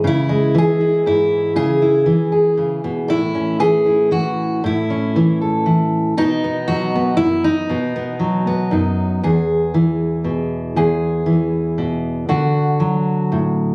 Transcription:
Already playing: E3 G#3 E4
0.04 C#3 E4
0.29 G#3
0.55 E3 G#4
0.81 E4
1.06 G#2 E4
1.56 C#3 G#4
1.82 E4
2.06 E3
2.32 G#4
2.57 C#3
2.84 B2
3.08 A2 E4
3.35 C#4
3.60 E3 G#4
3.86 E4
4.11 E3 F#4
4.64 A2 E4
4.90 C#4
5.16 E3
5.41 A4
5.66 E3
6.17 B2 D#4
6.44 B3
6.68 F#3 F#4
6.95 B3
7.17 F#2 E4
7.44 D#4
7.69 B2 B3
7.96 B3
8.19 F#3
8.47 B3
8.71 F#2 D#4
9.23 E2 G#4
9.74 E3
10.24 B2
10.76 E2 G#4
11.26 E3
11.78 B2
12.29 D3 F#4
12.80 F#3
13.32 A2

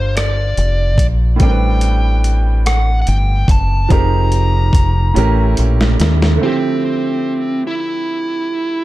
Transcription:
Already playing: G1 G3 D4 F4 A4 A#4 C5
0.17 D5, cross-stick, closed hi-hat
0.57 F1, closed hi-hat
0.98 A#1, kick, closed hi-hat
1.36 A2 G3, kick, closed hi-hat
1.40 A1 C4 D4 G5
1.44 A#4
1.51 B4
1.81 closed hi-hat
2.24 closed hi-hat
2.66 F#5, cross-stick, closed hi-hat
3.02 F#5
3.07 G1 G5, closed hi-hat
3.48 F#1 A5, kick, closed hi-hat
3.89 F1 F3 C4 D#4 G4 G#4 A#5, kick, closed hi-hat
3.93 A#4
4.32 closed hi-hat
4.73 kick, closed hi-hat
5.14 A1 A2 C#4 E4 G4 A#4, closed hi-hat
5.57 A#1, closed hi-hat
5.81 snare
6.00 D#2, snare, closed hi-hat
6.22 snare
6.36 D3 A3 C4
6.41 F3 C4 E4 G4
7.67 E4

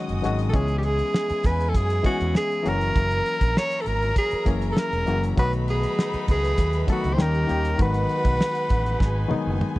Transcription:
Already playing: D#3 F#3 G#3 C#4 F#4 D#5 D#6
0.09 F#1, closed hi-hat
0.23 G#1 D#3 F#3 G#3 C#4 F#4, snare, closed hi-hat
0.39 closed hi-hat
0.50 C#3 E3 G#3 G#4 A4 G#5, kick
0.54 C#2 B3 C#4 E4 G#4, closed hi-hat
0.68 closed hi-hat
0.78 G4
0.83 G#4, closed hi-hat
0.99 closed hi-hat
1.14 snare
1.30 muted fingered electric bass stroke, closed hi-hat
1.44 E2 B4, kick, snare, closed hi-hat
1.61 closed hi-hat
1.69 A4
1.75 F#2 G#4, kick, closed hi-hat
1.90 closed hi-hat
2.03 E3 G#3 B3 C#4 F#4 G#4, kick, closed hi-hat
2.21 E2, closed hi-hat
2.35 G#4, snare
2.51 closed hi-hat
2.63 F#1 E3 F#3 A#3 C#4 F#4 A#4 A#5, closed hi-hat
2.69 A#4
2.81 closed hi-hat
2.96 F#1, kick, closed hi-hat
3.11 closed hi-hat
3.26 closed hi-hat
3.41 A#1, kick, closed hi-hat
3.57 C#5, snare
3.71 closed hi-hat
3.81 A4
3.86 G#1 A#4, closed hi-hat
4.02 closed hi-hat
4.16 G#4, kick, closed hi-hat
4.31 muted fingered electric bass stroke, closed hi-hat
4.45 F#1 E3 F#3 A#3 C#4 G#4, kick, closed hi-hat
4.62 closed hi-hat
4.72 A4
4.77 A#4, snare
4.93 E1, closed hi-hat
5.06 F#1 E3 F#3 A#3 C#4 F#4, closed hi-hat
5.24 closed hi-hat
5.36 B1 D#3 F#3 A3 B3 D#4 F#4 B4 B5, kick, closed hi-hat
5.53 closed hi-hat
5.68 G#4, closed hi-hat
5.83 closed hi-hat
5.99 snare
6.13 muted fingered electric bass stroke, closed hi-hat
6.28 C#2 G#4, kick, closed hi-hat
6.45 closed hi-hat
6.58 D#2, kick, closed hi-hat
6.73 closed hi-hat
6.87 D#3 F#3 A3 B3 A4, kick, closed hi-hat
6.92 F#4
7.04 C#2, closed hi-hat
7.14 D#3 A#3 C#4 G4 C5
7.18 D#2 G3 A#3 C#4 G4 A#4 G5, snare
7.34 closed hi-hat
7.47 D#2 D#3 G3 A#3 C#4 G4, closed hi-hat
7.65 closed hi-hat
7.78 G#1 D#3 F#3 G#3 B3 D#4 F#4 B4 F#5, kick, closed hi-hat
7.83 B4
7.94 closed hi-hat
8.09 closed hi-hat
8.25 B1, kick, closed hi-hat
8.41 snare
8.55 closed hi-hat
8.69 A1, kick, closed hi-hat
8.86 closed hi-hat
9.00 G#1 G#4 G#5, kick, snare
9.28 D#3 F#3 G#3 B3 D#4, muted fingered electric bass stroke, high tom
9.47 F#1
9.61 mid tom
9.76 mid tom

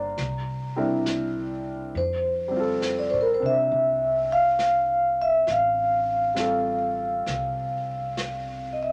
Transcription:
Already playing: G1 G3 A#3 D4 F4 G4 A#4 C5 D5 A#5
0.17 C2, brush sweep, snare
0.76 G3 C4 D4 E4 A#4
1.06 snare, hi-hat pedal
1.94 F2 C5, brush sweep
2.48 G3 C4
2.57 F4 A4
2.82 snare, hi-hat pedal
2.99 D5
3.10 A2 C5
3.21 A#4
3.34 C5
3.40 C3 C4 D4
3.46 E5
3.71 C2, brush sweep
4.32 F5
4.59 snare, hi-hat pedal
5.22 E5
5.47 A1 F5, brush sweep, snare
6.34 G3 C4 F4, snare, hi-hat pedal
6.39 A4
7.26 C2, brush sweep, snare
8.17 snare, hi-hat pedal
8.73 D#5
8.83 E5

